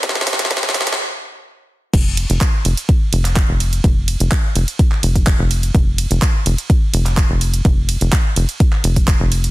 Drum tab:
CC |--------------------------------|x-------------------------------|--------------------------------|--------------------------------|
RD |--------------------------------|x---x---x---x---x---x---x---x---|x---x---x---x---x---x---x---x---|x---x---x---x---x---x---x---x---|
HH |x---o-x-x---o-x-----------------|x---o-x-x---o-x-x---o-x-x---o-x-|x---o-x-x---o-x-x---o-x-x---o-x-|x---o-x-x---o-x-x---o-x-x---o-x-|
CP |--------------------------------|--------x-------------x-x-------|--------x---------x-----x-------|--------x-------------x-x-------|
SD |oooooooooooooooo----------------|--------------------------------|--------------------------------|--------------------------------|
BD |o-------o-----------------------|o-------o-------o-------o-------|o-------o-------o-----o-o-------|o-------o-------o-------o-------|

CC |--------------------------------|
RD |x---x---x---x---x---x---x---x---|
HH |x---o-x-x---o-x-x---o-x-x---o-x-|
CP |--------x---------x-----x-------|
SD |--------------------------------|
BD |o-------o-------o-----o-o-------|